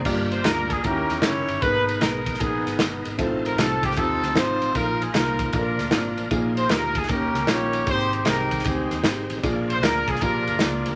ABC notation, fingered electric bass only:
X:1
M:4/4
L:1/8
Q:"Swing" 1/4=154
K:Bbmix
V:1 name="Fingered electric bass" clef=bass
G,,,2 D,,2 E,, _F,, _G,,, =G,,, | A,,,2 _C,,2 B,,, A,,, G,,, A,,, | =A,,,2 C,,2 E,, D,, _A,,, =A,,, | B,,,2 C,,2 B,,, D,, A,,, =A,,, |
B,,,2 D,,2 E,, _D,, B,,,2 | A,,,2 C,,2 D,, E,, A,,, =A,,, | B,,,2 D,, C,, B,,, G,,, _D,, =D,, |]